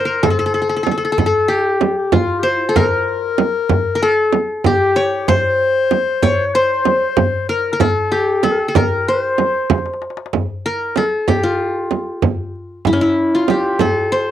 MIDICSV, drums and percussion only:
0, 0, Header, 1, 3, 480
1, 0, Start_track
1, 0, Tempo, 631579
1, 178, Time_signature, 4, 2, 24, 8
1, 10876, End_track
2, 0, Start_track
2, 0, Title_t, "Darbuka"
2, 182, Note_on_c, 9, 64, 105
2, 258, Note_off_c, 9, 64, 0
2, 659, Note_on_c, 9, 63, 70
2, 735, Note_off_c, 9, 63, 0
2, 779, Note_on_c, 9, 62, 29
2, 855, Note_off_c, 9, 62, 0
2, 895, Note_on_c, 9, 64, 92
2, 971, Note_off_c, 9, 64, 0
2, 1372, Note_on_c, 9, 63, 71
2, 1448, Note_off_c, 9, 63, 0
2, 1497, Note_on_c, 9, 62, 29
2, 1573, Note_off_c, 9, 62, 0
2, 1613, Note_on_c, 9, 64, 82
2, 1689, Note_off_c, 9, 64, 0
2, 1734, Note_on_c, 9, 62, 28
2, 1810, Note_off_c, 9, 62, 0
2, 2097, Note_on_c, 9, 64, 83
2, 2173, Note_off_c, 9, 64, 0
2, 2340, Note_on_c, 9, 62, 28
2, 2416, Note_off_c, 9, 62, 0
2, 2461, Note_on_c, 9, 62, 25
2, 2537, Note_off_c, 9, 62, 0
2, 2581, Note_on_c, 9, 63, 71
2, 2657, Note_off_c, 9, 63, 0
2, 2699, Note_on_c, 9, 62, 24
2, 2775, Note_off_c, 9, 62, 0
2, 2817, Note_on_c, 9, 64, 84
2, 2893, Note_off_c, 9, 64, 0
2, 3058, Note_on_c, 9, 62, 26
2, 3134, Note_off_c, 9, 62, 0
2, 3301, Note_on_c, 9, 63, 67
2, 3377, Note_off_c, 9, 63, 0
2, 3417, Note_on_c, 9, 62, 24
2, 3493, Note_off_c, 9, 62, 0
2, 3536, Note_on_c, 9, 64, 92
2, 3612, Note_off_c, 9, 64, 0
2, 3655, Note_on_c, 9, 62, 25
2, 3731, Note_off_c, 9, 62, 0
2, 4015, Note_on_c, 9, 64, 101
2, 4091, Note_off_c, 9, 64, 0
2, 4257, Note_on_c, 9, 62, 24
2, 4333, Note_off_c, 9, 62, 0
2, 4375, Note_on_c, 9, 62, 23
2, 4451, Note_off_c, 9, 62, 0
2, 4491, Note_on_c, 9, 63, 67
2, 4567, Note_off_c, 9, 63, 0
2, 4737, Note_on_c, 9, 64, 99
2, 4813, Note_off_c, 9, 64, 0
2, 5214, Note_on_c, 9, 63, 72
2, 5290, Note_off_c, 9, 63, 0
2, 5339, Note_on_c, 9, 62, 24
2, 5415, Note_off_c, 9, 62, 0
2, 5459, Note_on_c, 9, 64, 96
2, 5535, Note_off_c, 9, 64, 0
2, 5934, Note_on_c, 9, 64, 107
2, 6010, Note_off_c, 9, 64, 0
2, 6307, Note_on_c, 9, 62, 24
2, 6383, Note_off_c, 9, 62, 0
2, 6422, Note_on_c, 9, 63, 73
2, 6498, Note_off_c, 9, 63, 0
2, 6544, Note_on_c, 9, 62, 25
2, 6620, Note_off_c, 9, 62, 0
2, 6659, Note_on_c, 9, 64, 104
2, 6735, Note_off_c, 9, 64, 0
2, 6784, Note_on_c, 9, 62, 24
2, 6860, Note_off_c, 9, 62, 0
2, 7020, Note_on_c, 9, 62, 28
2, 7096, Note_off_c, 9, 62, 0
2, 7140, Note_on_c, 9, 63, 69
2, 7216, Note_off_c, 9, 63, 0
2, 7260, Note_on_c, 9, 62, 26
2, 7336, Note_off_c, 9, 62, 0
2, 7378, Note_on_c, 9, 63, 53
2, 7432, Note_on_c, 9, 62, 59
2, 7454, Note_off_c, 9, 63, 0
2, 7491, Note_on_c, 9, 63, 64
2, 7508, Note_off_c, 9, 62, 0
2, 7551, Note_on_c, 9, 62, 67
2, 7567, Note_off_c, 9, 63, 0
2, 7613, Note_on_c, 9, 63, 71
2, 7627, Note_off_c, 9, 62, 0
2, 7678, Note_on_c, 9, 62, 80
2, 7689, Note_off_c, 9, 63, 0
2, 7730, Note_on_c, 9, 63, 91
2, 7754, Note_off_c, 9, 62, 0
2, 7796, Note_on_c, 9, 62, 94
2, 7806, Note_off_c, 9, 63, 0
2, 7855, Note_on_c, 9, 64, 78
2, 7872, Note_off_c, 9, 62, 0
2, 7931, Note_off_c, 9, 64, 0
2, 7980, Note_on_c, 9, 62, 25
2, 8056, Note_off_c, 9, 62, 0
2, 8340, Note_on_c, 9, 63, 63
2, 8416, Note_off_c, 9, 63, 0
2, 8578, Note_on_c, 9, 64, 82
2, 8654, Note_off_c, 9, 64, 0
2, 8700, Note_on_c, 9, 62, 25
2, 8776, Note_off_c, 9, 62, 0
2, 8820, Note_on_c, 9, 62, 25
2, 8896, Note_off_c, 9, 62, 0
2, 8939, Note_on_c, 9, 62, 25
2, 9015, Note_off_c, 9, 62, 0
2, 9053, Note_on_c, 9, 63, 67
2, 9129, Note_off_c, 9, 63, 0
2, 9175, Note_on_c, 9, 62, 23
2, 9251, Note_off_c, 9, 62, 0
2, 9297, Note_on_c, 9, 64, 81
2, 9373, Note_off_c, 9, 64, 0
2, 9421, Note_on_c, 9, 62, 23
2, 9497, Note_off_c, 9, 62, 0
2, 9541, Note_on_c, 9, 62, 24
2, 9617, Note_off_c, 9, 62, 0
2, 9779, Note_on_c, 9, 64, 84
2, 9855, Note_off_c, 9, 64, 0
2, 10258, Note_on_c, 9, 63, 70
2, 10334, Note_off_c, 9, 63, 0
2, 10496, Note_on_c, 9, 64, 77
2, 10572, Note_off_c, 9, 64, 0
2, 10736, Note_on_c, 9, 62, 25
2, 10812, Note_off_c, 9, 62, 0
2, 10852, Note_on_c, 9, 62, 25
2, 10876, Note_off_c, 9, 62, 0
2, 10876, End_track
3, 0, Start_track
3, 0, Title_t, "Frame drum"
3, 177, Note_on_c, 9, 64, 84
3, 253, Note_off_c, 9, 64, 0
3, 658, Note_on_c, 9, 64, 72
3, 734, Note_off_c, 9, 64, 0
3, 896, Note_on_c, 9, 64, 86
3, 972, Note_off_c, 9, 64, 0
3, 1375, Note_on_c, 9, 64, 69
3, 1451, Note_off_c, 9, 64, 0
3, 1612, Note_on_c, 9, 64, 85
3, 1688, Note_off_c, 9, 64, 0
3, 2095, Note_on_c, 9, 64, 82
3, 2171, Note_off_c, 9, 64, 0
3, 2569, Note_on_c, 9, 64, 70
3, 2645, Note_off_c, 9, 64, 0
3, 2807, Note_on_c, 9, 64, 81
3, 2883, Note_off_c, 9, 64, 0
3, 3287, Note_on_c, 9, 64, 68
3, 3363, Note_off_c, 9, 64, 0
3, 3529, Note_on_c, 9, 64, 78
3, 3605, Note_off_c, 9, 64, 0
3, 4013, Note_on_c, 9, 64, 79
3, 4089, Note_off_c, 9, 64, 0
3, 4491, Note_on_c, 9, 64, 70
3, 4567, Note_off_c, 9, 64, 0
3, 4731, Note_on_c, 9, 64, 80
3, 4807, Note_off_c, 9, 64, 0
3, 5209, Note_on_c, 9, 64, 73
3, 5285, Note_off_c, 9, 64, 0
3, 5447, Note_on_c, 9, 64, 86
3, 5523, Note_off_c, 9, 64, 0
3, 5927, Note_on_c, 9, 64, 88
3, 6003, Note_off_c, 9, 64, 0
3, 6407, Note_on_c, 9, 64, 70
3, 6483, Note_off_c, 9, 64, 0
3, 6651, Note_on_c, 9, 64, 92
3, 6727, Note_off_c, 9, 64, 0
3, 7130, Note_on_c, 9, 64, 63
3, 7206, Note_off_c, 9, 64, 0
3, 7370, Note_on_c, 9, 64, 92
3, 7446, Note_off_c, 9, 64, 0
3, 7851, Note_on_c, 9, 64, 78
3, 7927, Note_off_c, 9, 64, 0
3, 8328, Note_on_c, 9, 64, 63
3, 8404, Note_off_c, 9, 64, 0
3, 8570, Note_on_c, 9, 64, 78
3, 8646, Note_off_c, 9, 64, 0
3, 9050, Note_on_c, 9, 64, 64
3, 9126, Note_off_c, 9, 64, 0
3, 9289, Note_on_c, 9, 64, 80
3, 9365, Note_off_c, 9, 64, 0
3, 9765, Note_on_c, 9, 64, 83
3, 9841, Note_off_c, 9, 64, 0
3, 10245, Note_on_c, 9, 64, 70
3, 10321, Note_off_c, 9, 64, 0
3, 10482, Note_on_c, 9, 64, 83
3, 10558, Note_off_c, 9, 64, 0
3, 10876, End_track
0, 0, End_of_file